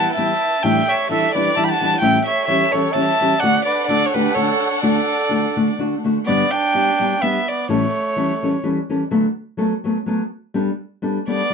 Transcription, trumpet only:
Already playing: F#5
0.13 E5
0.62 E5
0.88 C#5
1.10 A4
1.34 B4
1.56 E5
1.65 G5
1.71 F#5
2.02 E5
2.26 C#5
2.47 C#5
2.72 A4
2.92 E5
3.39 D5
3.66 B4
3.88 A4
4.07 A4
4.13 G4
4.34 A4
4.82 A4
6.26 B3
6.52 D4
7.22 B3
7.49 B3
7.70 A3
11.28 B3

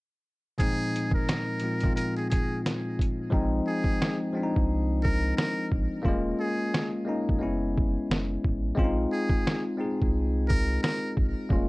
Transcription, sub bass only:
3.33 A#1
4.57 C2
5.72 A#1
6.05 D#1
7.29 G1
7.42 F#1
8.10 F#1
8.45 A1
8.78 A#1
10.02 C2
11.18 A#1
11.51 D#1

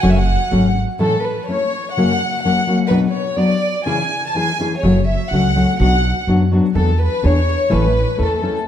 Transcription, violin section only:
0.01 F#5
0.09 E5
0.17 F#5
1.00 A4
1.24 B4
1.47 C#5
1.93 F#5
2.43 F#5
2.88 B4
3.12 C#5
3.37 D5
3.84 G#5
4.27 A5
4.32 G#5
4.81 C#5
5.06 E5
5.29 F#5
5.78 F#5
6.73 A4
7.01 B4
7.24 C#5
7.74 B4
8.23 A4

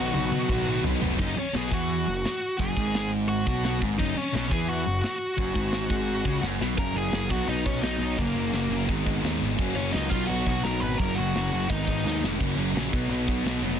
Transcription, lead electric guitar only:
Already playing: F#4 F#5
1.19 D#4 D#5
1.37 C#4 C#5
1.56 G#4 G#5
1.73 F#4 F#5
2.60 G#4 G#5
3.28 F#4 F#5
3.99 D#4 D#5
4.17 C#4 C#5
4.51 G#4 G#5
4.68 F#4 F#5
6.78 A#4 A#5
6.96 G#4 G#5
7.31 F#4 F#5
7.49 D#4 D#5
7.66 C#4 C#5
7.83 D#4 D#5
8.18 A#3 A#4
9.75 C#4 C#5
9.92 D#4 D#5
10.10 F4 F5
10.27 F#4 F#5
10.64 A#4 A#5
10.80 B4 B5
10.98 A#4 A#5
11.15 F#4 F#5
11.70 D#4 D#5

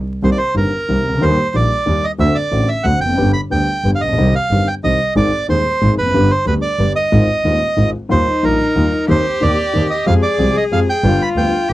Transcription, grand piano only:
0.23 C2 C3 D#3 A#3 C4 G4
0.55 G1 G2 D#3 A#3 C4 G4
0.88 C2 C3 D#3 A#3 C4 G4
1.09 C2
1.13 C#2 D2
1.21 D#2 D#3 G3 A#3 G4
1.54 A#1 A#2 D#3 G3 A#3 G4
1.86 D#2 D#3 G3 A#3 G4
2.18 D2 D3 A3 C4 F#4
2.51 A1 A2 D3 A3 C4 F#4
2.84 D2 D3 A3 C4 F#4
3.05 E2 F2
3.13 F#2
3.17 G1 G2 D3 G3 B3 G4
3.50 D2 D3 G3 B3 G4
3.85 G1 G2 D3 G3 B3 G4
4.05 A1
4.09 A#1
4.13 B1
4.18 C2 C3 D#3 G3 C4 G4
4.52 G1 G2 D#3 G3 C4 G4
4.84 C2 C3 D#3 G3 C4 G4
5.16 G#1 G#2 D#3 G#3 C4 G#4
5.48 D#1 D#2 D#3 G#3 C4 G#4
5.81 G#1 G#2 D#3 G#3 C4 G#4
6.02 E2
6.06 F2
6.11 G1 F#2 G2 D3 G3 B3 G4
6.45 D2 D3 G3 B3 G4
6.79 G1 G2 D3 G3 B3 G4
7.12 G#1 G#2 D#3 G#3 C4 F4
7.45 D#1 D#2 D#3 G#3 C4 F4
7.77 G#1 G#2 D#3 G#3 C4 F4
8.09 D#2 D#3 G3 A#3 F4
8.43 A#1 A#2 D#3 G3 A#3 F4
8.76 D#2 D#3 G3 A#3 F4
9.08 D#2 D#3 A#3 C4 G4
9.41 D#2 D#3 A#3 C4 G4
9.73 D#2 D#3 A#3 C4 G4
10.06 F2 F3 G#3 C4 G4
10.39 C2 C3 F3 G#3 C4 G4
10.71 F2 F3 G#3 C4 G4
11.04 G1 G2 D3 G3 B3 F4
11.37 D2 D3 G3 B3 F4

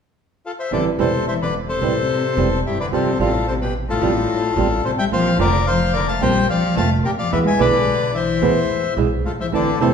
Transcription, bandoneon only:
0.46 F4 A4
0.59 C5 E5
0.73 A4 D5
1.00 A4 C5
1.28 C5 E5
1.42 B4 D5
1.69 A4 C5
2.66 E4 G4
2.80 B4 D5
2.94 A4 C5
3.21 F4 A4
3.48 A4 C5
3.62 G4 B4
3.90 F4 A4
4.85 A4 C5
4.98 E5 G5
5.13 C5 F5
5.40 A#4 D5
5.67 C5 F5
5.93 A#4 D5
6.08 F5 A5
6.22 C5 G5
6.50 D5 F5
6.77 F5 A5
7.05 G4 A#4
7.18 D5 F5
7.33 B4 E5
7.47 E5 G#5
7.60 B4 D5
8.15 C5 E5
9.25 F4 A4
9.40 C5 E5
9.54 A4 D5
9.81 A4 C5

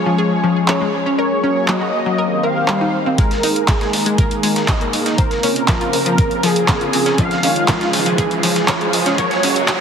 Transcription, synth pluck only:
0.06 F3
0.18 G#4
0.44 F3
0.68 C#5
0.81 G#3
1.06 C#4
1.19 A#4
1.44 C#4
1.68 F#3
1.81 F#4
2.06 F#3
2.18 A#4
2.43 A#4
2.68 G3
2.81 D#4
3.06 C4
3.18 G#3
3.43 D#4
3.68 G#3
3.81 G#4
4.06 G#3
4.18 A#4
4.43 G#3
4.68 D#5
4.81 A#3
5.06 D#4
5.18 C5
5.43 C#4
5.68 F3
5.81 F4
6.06 F3
6.18 A#4
6.43 F3
6.68 A#3
6.81 F3
7.06 C#4
7.18 F3
7.43 C#4
7.68 F3
7.81 F4
8.06 F3
8.18 G#4
8.43 F3
8.68 C#5
8.81 G#3
9.06 C#4
9.18 A#4
9.43 C#4
9.68 F#3

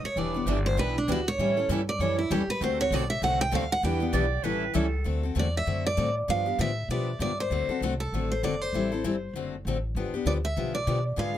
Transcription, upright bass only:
0.03 muted upright bass stroke
0.16 E1
0.46 G1
0.77 B1
1.08 D2
1.38 A2
1.69 G2
1.99 F#2
2.30 E2
2.47 muted upright bass stroke
2.61 D2
2.90 B1
3.22 C2
3.52 D2
3.83 E2
4.13 B1
4.44 A1
4.74 C#2
5.06 D2
5.35 E2
5.67 F#2
5.97 A2
6.28 G2
6.59 A2
6.88 B2
7.19 G2
7.50 D2
7.68 muted upright bass stroke
7.80 C2
8.12 A1
8.43 F#1
8.72 A1
9.04 G1
9.33 F#1
9.65 A1
9.95 G1
10.12 muted upright bass stroke
10.25 D2
10.57 B1
10.87 B2
11.17 G#2

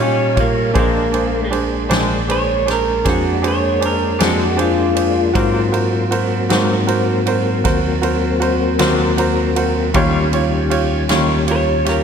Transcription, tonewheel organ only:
Already playing: G3 C#5 F5
0.75 G#3 A#3 D4
5.36 F#3 A#3 C4
9.96 D#3 G3 C#4

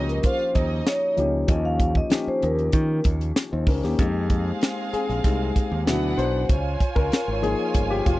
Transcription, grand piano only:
Already playing: F3 A#3 C#4 D#4 F#4 G4
1.16 F3 A#3 C#4 D#4 G4
1.47 F3 A#3 C#4 D#4 G4
2.10 F3 A#3 C#4 D#4 G4
3.52 D#4 C5
3.68 C#4 A#4
3.84 A#3 G4
3.99 G#3 D#4 G4
4.93 G#4
5.24 G#3 D#4 G4
5.86 B2 F#3 E4
6.18 C5
6.96 A#4
7.42 F3 A#3 D#4 G#4
7.90 G4
8.06 F4

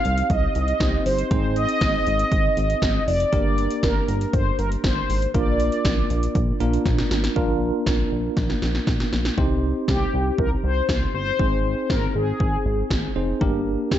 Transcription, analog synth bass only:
0.05 C2
0.30 C2
0.56 C2
0.80 C2
1.06 G1
1.31 G#1
1.81 G#1
2.07 G#1
2.32 G#1
2.57 G#1
2.82 G#1
3.08 F1
3.33 G1
3.83 G1
4.08 G1
4.33 G1
4.59 G1
4.84 G1
5.09 G#1
5.35 A#1
5.85 A#1
6.10 A#1
6.35 A#1
6.61 A#1
6.86 A#1
7.11 G#1
7.36 A#1
7.87 A#1
8.12 A#1
8.37 A#1
8.62 A#1
8.87 A#1
9.13 A#1
9.38 C2
9.88 C2
10.13 C2
10.38 C2
10.64 C2
10.89 C2
11.14 G1
11.39 G#1
11.90 G#1
12.15 G#1
12.40 G#1
12.65 G#1
12.90 G#1
13.16 F1
13.41 G1
13.91 G1

